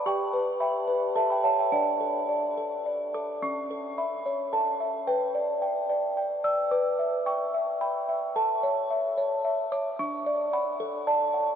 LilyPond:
\new Staff \with { instrumentName = "Music box" } { \time 3/4 \key a \mixolydian \tempo 4 = 110 << { <g'' cis'''>4 <g'' b''>4 <e'' a''>16 <g'' b''>16 <fis'' a''>16 <e'' g''>16 | <d'' fis''>2~ <d'' fis''>8 d'''8 | cis'''4 b''4 a''4 | g''2 r8 e'''8 |
d'''4 cis'''4 b''4 | a''2 r8 d'''8 | cis'''4 b''4 a''4 | } \\ { g'8 b'8 e''8 b'8 a'8 <cis'' e''>8 | d'8 a'8 d''8 a'8 d''8 a'8 | cis'8 a'8 e''8 cis''8 a'8 e''8 | b'8 d''8 g''8 d''8 g''8 d''8 |
b'8 e''8 g''8 e''8 g''8 e''8 | a'8 cis''8 e''8 cis''8 e''8 cis''8 | d'8 d''8 fis''8 a'8 d''8 fis''8 | } >> }